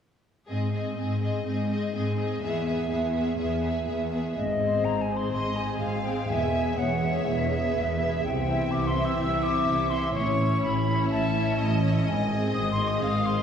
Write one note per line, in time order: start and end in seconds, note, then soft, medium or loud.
0.48 0.92 G#2 soft
0.48 0.72 C4 soft
0.48 0.71 G#4 soft
0.48 0.72 D#5 soft
0.73 0.96 C4 soft
0.73 0.96 G#4 soft
0.73 0.96 D#5 soft
0.97 1.40 G#2 soft
0.97 1.20 C4 soft
0.97 1.21 G#4 soft
0.97 1.21 D#5 soft
1.21 1.44 C4 soft
1.21 1.45 G#4 soft
1.21 1.45 D#5 soft
1.45 1.88 G#2 soft
1.45 1.68 C4 soft
1.45 1.69 G#4 soft
1.45 1.69 D#5 soft
1.69 1.93 C4 soft
1.69 1.93 G#4 soft
1.69 1.93 D#5 soft
1.94 2.36 G#2 soft
1.94 2.16 C4 soft
1.94 2.16 G#4 soft
1.94 2.17 D#5 soft
2.17 2.41 C4 soft
2.17 2.41 G#4 soft
2.17 2.41 D#5 soft
2.42 2.84 E2 soft
2.42 2.66 B3 soft
2.42 2.65 G#4 soft
2.42 2.66 E5 soft
2.66 2.89 B3 soft
2.66 2.88 G#4 soft
2.66 2.90 E5 soft
2.89 3.33 E2 soft
2.89 3.13 B3 soft
2.89 3.11 G#4 soft
2.89 3.14 E5 soft
3.13 3.38 B3 soft
3.13 3.35 G#4 soft
3.13 3.38 E5 soft
3.37 3.81 E2 soft
3.37 3.61 B3 soft
3.37 3.60 G#4 soft
3.37 3.62 E5 soft
3.61 3.86 B3 soft
3.61 3.84 G#4 soft
3.61 3.86 E5 soft
3.85 4.30 E2 soft
3.85 4.11 B3 soft
3.85 4.10 G#4 soft
3.85 4.10 E5 soft
4.11 4.36 B3 soft
4.11 4.35 G#4 soft
4.11 4.35 E5 soft
4.35 4.79 G#1 soft
4.35 4.79 G#2 soft
4.35 8.19 G#3 soft
4.35 6.25 C4 soft
4.35 4.86 D#5 soft
4.60 5.07 C4 soft
4.60 5.07 G#4 soft
4.60 5.07 C5 soft
4.84 5.27 G#1 soft
4.84 5.27 G#2 soft
4.84 5.03 A#5 medium
5.02 5.18 G#5 soft
5.08 5.55 C4 soft
5.08 5.55 G#4 soft
5.08 5.55 C5 soft
5.16 5.32 C6 soft
5.31 5.75 G#1 soft
5.31 5.75 G#2 soft
5.31 5.77 D#5 soft
5.31 5.58 C6 medium
5.56 6.04 C4 soft
5.56 6.04 G#4 soft
5.56 6.03 C5 soft
5.56 6.06 G#5 soft
5.80 6.24 G#1 soft
5.80 6.24 G#2 soft
5.80 6.28 F5 soft
6.04 6.29 C4 soft
6.04 6.27 G#4 soft
6.04 6.28 C5 soft
6.04 6.31 G5 soft
6.28 6.72 E1 soft
6.28 6.72 E2 soft
6.28 8.19 B3 soft
6.28 6.53 B3 soft
6.28 6.53 G#4 soft
6.28 6.77 E5 soft
6.28 6.52 E5 soft
6.28 6.79 G#5 medium
6.54 7.00 B3 soft
6.54 7.01 G#4 soft
6.54 7.01 E5 soft
6.77 7.20 E1 soft
6.77 7.20 E2 soft
6.77 7.72 C#5 soft
6.77 7.26 F#5 soft
7.02 7.49 B3 soft
7.02 7.49 G#4 soft
7.02 7.49 E5 soft
7.26 7.69 E1 soft
7.26 7.69 E2 soft
7.26 8.22 E5 medium
7.50 7.98 B3 soft
7.50 7.97 G#4 soft
7.50 7.98 E5 soft
7.73 8.18 E1 soft
7.73 8.18 E2 soft
7.73 8.23 B4 soft
7.99 8.23 B3 soft
7.99 8.23 G#4 soft
7.99 8.23 E5 soft
8.22 8.66 C2 soft
8.22 8.66 C3 soft
8.22 12.02 E3 soft
8.22 9.97 C4 soft
8.22 10.11 E5 soft
8.22 8.73 G5 medium
8.46 8.94 C4 soft
8.46 8.94 E4 soft
8.46 8.93 E5 soft
8.71 9.14 C2 soft
8.71 9.14 C3 soft
8.71 8.89 D6 medium
8.87 9.06 C6 medium
8.95 9.42 C4 soft
8.95 9.42 E4 soft
8.95 9.42 E5 soft
9.05 9.18 E6 medium
9.18 9.61 C2 soft
9.18 9.61 C3 medium
9.18 9.44 E6 medium
9.43 9.89 C4 soft
9.43 9.89 E4 soft
9.43 9.90 E5 soft
9.43 9.91 D6 medium
9.66 10.09 C2 soft
9.66 10.09 C3 soft
9.90 10.14 C4 soft
9.90 10.14 E4 soft
9.90 10.15 E5 soft
9.90 10.14 C6 medium
10.14 10.57 A1 medium
10.14 10.57 A2 soft
10.14 12.02 C#4 medium
10.14 10.38 C#4 soft
10.14 10.38 E4 soft
10.14 10.37 C#5 soft
10.14 11.09 C#5 medium
10.14 10.62 C#6 medium
10.38 10.85 C#4 soft
10.38 10.86 E4 soft
10.38 10.85 C#5 soft
10.63 11.05 A1 soft
10.63 11.05 A2 soft
10.63 11.09 B5 medium
10.86 11.33 C#4 soft
10.86 11.33 E4 soft
10.86 11.33 C#5 soft
11.11 11.53 A1 soft
11.11 11.53 A2 medium
11.11 11.57 E5 medium
11.11 11.77 A5 medium
11.34 11.81 C#4 soft
11.34 11.81 E4 soft
11.34 11.81 C#5 soft
11.58 12.00 A1 medium
11.58 12.00 A2 soft
11.58 12.99 D#5 medium
11.82 12.06 C#4 soft
11.82 12.06 E4 soft
11.82 12.06 C#5 soft
12.06 12.49 G#1 medium
12.06 12.48 G#2 soft
12.06 13.43 D#3 soft
12.06 13.43 C4 soft
12.06 12.51 G#5 medium
12.29 12.76 C4 soft
12.29 12.77 G#4 soft
12.29 12.76 D#5 soft
12.53 12.97 G#1 soft
12.53 12.96 G#2 medium
12.53 12.69 D#6 medium
12.72 12.90 C6 medium
12.77 13.24 C4 soft
12.77 13.24 G#4 soft
12.77 13.25 D#5 soft
12.88 13.02 D#6 medium
13.02 13.43 G#1 medium
13.02 13.43 G#2 medium
13.02 13.43 F5 medium
13.02 13.27 D#6 medium
13.25 13.43 C4 soft
13.25 13.43 G#4 soft
13.25 13.43 D#5 soft
13.25 13.43 C6 medium